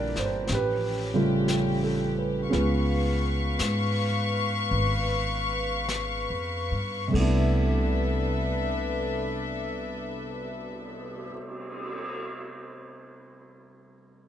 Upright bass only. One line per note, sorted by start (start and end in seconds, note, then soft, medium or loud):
0.00 0.13 A#1 soft
0.17 0.47 G1 medium
0.49 2.49 A1 medium
2.53 3.56 C#2 medium
3.60 4.67 G#2 medium
4.71 6.25 G#1 medium
6.30 6.69 F2 soft
6.71 7.11 G2 soft
7.14 11.26 C2 medium